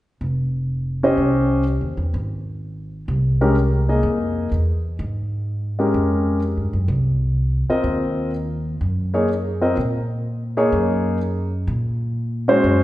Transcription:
0.21 F1
1.03 C#4 G4 C5 D#5
1.17 C2
1.81 D#2
1.97 E2
2.14 G#1
3.08 C2
3.41 G#3 C#4 G4 A#4
3.89 A#3 D#4 G#4 D#5
4.03 F2
4.52 E2
4.99 G#2
5.79 G#3 C#4 G4 A#4
5.94 F2
6.57 G2
6.73 F#2
6.88 C2
7.69 C4 F4 A#4 D#5, muted upright bass stroke
7.84 D#2
8.81 F#2
9.14 A#3 D#4 G#4 C#5
9.61 C4 F4 A#4 D#5
9.77 A#2
10.57 A#3 D#4 G#4 C#5
10.72 F#2
11.67 A#2
12.48 G#3 C#4 F#4 C5
12.64 F#2

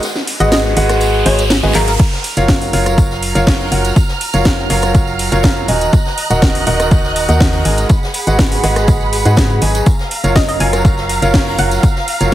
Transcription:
Already playing: riser
0.03 snare, closed hi-hat, tambourine
0.15 snare, tambourine
0.27 open hi-hat, tambourine
0.40 G#1 G#3 F#4 G#4 B4 D#5 F#5, closed hi-hat, tambourine
0.52 D#5, snare, closed hi-hat, tambourine
0.65 snare, tambourine
0.76 G#1 G#3 F#4 G#4 B4 D#5 F#5, open hi-hat, tambourine
0.89 cross-stick, snare, closed hi-hat, tambourine
1.01 closed hi-hat, tambourine
1.14 tambourine
1.26 G#1 G#3 F#4 G#4 B4 C#5 D#5 G#5, open hi-hat
1.39 closed hi-hat, tambourine
1.50 snare, closed hi-hat, tambourine
1.63 G#1 G#3 F#4 G#4 B4 D#5 G#5, tambourine
1.74 G#1 F#3 F#4 G#4 A#4 B4 D#5 F5, clap, open hi-hat, tambourine
1.88 A#4, closed hi-hat, tambourine
1.99 A#5 F6, kick, closed hi-hat, tambourine, crash
2.12 snare, tambourine
2.24 open hi-hat, tambourine
2.37 F#1 F#3 F4 F#4 A#4 C#5 F5, closed hi-hat, tambourine
2.48 kick, snare, closed hi-hat, tambourine
2.62 open hi-hat, tambourine
2.73 F#1 F#3 F4 F#4 A#4 C#5 F5, open hi-hat, tambourine
2.86 cross-stick, closed hi-hat, tambourine
2.98 kick, closed hi-hat, tambourine
3.11 snare, tambourine
3.22 open hi-hat, tambourine
3.35 F#1 F#3 F4 F#4 A#4 C#5 F5, closed hi-hat, tambourine
3.47 kick, snare, closed hi-hat, open hi-hat, tambourine
3.61 tambourine
3.72 F#1 F#3 F4 F#4 A#4 C#5 F#5, open hi-hat, tambourine
3.85 closed hi-hat, tambourine
3.96 kick, closed hi-hat, tambourine
4.09 snare, tambourine
4.21 open hi-hat, tambourine
4.33 F#1 F#3 F4 F#4 A#4 C#5 F5, closed hi-hat, tambourine
4.45 kick, snare, closed hi-hat, tambourine
4.59 snare, tambourine
4.70 F#1 F#3 F4 F#4 A#4 C#5 F5, snare, open hi-hat, tambourine
4.82 cross-stick, snare, closed hi-hat, tambourine
4.95 kick, closed hi-hat, tambourine
5.07 tambourine
5.19 open hi-hat, tambourine
5.32 F#1 F#3 F4 F#4 A#4 C#5 F5, closed hi-hat, tambourine
5.43 kick, snare, closed hi-hat, tambourine
5.57 tambourine
5.68 D#1 D#3 D#4 F#4 A#4 D#5 G#5 F#6, open hi-hat, tambourine
5.81 closed hi-hat, tambourine
5.93 kick, closed hi-hat, tambourine
6.05 snare, tambourine
6.18 open hi-hat, tambourine
6.30 D#1 D#3 D#4 F#4 A#4 D#5 F#5, closed hi-hat, tambourine
6.42 kick, snare, closed hi-hat, tambourine
6.55 open hi-hat, tambourine
6.67 D#1 D#3 D#4 F#4 A#4 D#5 F#5, open hi-hat, tambourine
6.80 cross-stick, closed hi-hat, tambourine
6.91 kick, closed hi-hat, tambourine
7.04 snare, tambourine
7.16 open hi-hat, tambourine
7.29 D#2 D#3 D#4 F#4 A#4 D#5 F#5, closed hi-hat, tambourine
7.40 kick, snare, closed hi-hat, open hi-hat, tambourine
7.53 tambourine
7.65 G#1 G#3 D#4 F#4 A#4 D#5 G#5, open hi-hat, tambourine
7.78 closed hi-hat, tambourine
7.89 G#4 F#5 B5, kick, closed hi-hat, tambourine
8.03 snare, tambourine
8.14 open hi-hat, tambourine
8.27 G#1 G#3 F#4 G#4 B4 D#5 F#5, closed hi-hat, tambourine
8.39 kick, snare, closed hi-hat, tambourine
8.52 snare, open hi-hat, tambourine
8.63 G#1 G#3 F#4 G#4 B4 D#5 F#5, cross-stick, snare, open hi-hat, tambourine
8.76 cross-stick, snare, closed hi-hat, tambourine
8.88 kick, closed hi-hat, tambourine
9.01 tambourine
9.13 open hi-hat, tambourine
9.25 G#2 G#3 F#4 G#4 B4 D#5 F#5, closed hi-hat, tambourine
9.36 kick, snare, closed hi-hat, tambourine
9.50 tambourine
9.61 G#1 F#3 F#4 G#4 B4 D#5 G#5, open hi-hat, tambourine
9.75 closed hi-hat, tambourine
9.86 F5 A#5, kick, closed hi-hat, tambourine
9.99 snare, tambourine
10.11 open hi-hat, tambourine
10.24 F#1 F#3 F4 F#4 A#4 C#5 F5, closed hi-hat, tambourine
10.36 D#5, kick, snare, closed hi-hat, tambourine
10.48 D#5, open hi-hat, tambourine
10.60 F#1 F#3 F4 F#4 A#4 C#5 F5 G#5, open hi-hat, tambourine
10.73 cross-stick, closed hi-hat, tambourine
10.85 kick, closed hi-hat, tambourine
10.97 snare, tambourine
11.09 open hi-hat, tambourine
11.22 F#1 F#3 F4 F#4 A#4 C#5 F5, closed hi-hat, tambourine
11.34 kick, snare, closed hi-hat, open hi-hat
11.47 tambourine
11.58 F#1 F#3 F4 F#4 A#4 C#5 F#5, open hi-hat, tambourine
11.71 closed hi-hat, tambourine
11.83 kick, closed hi-hat, tambourine
11.96 snare, tambourine
12.08 open hi-hat, tambourine
12.20 F#1 F#3 F4 F#4 A#4 C#5 F5, closed hi-hat, tambourine

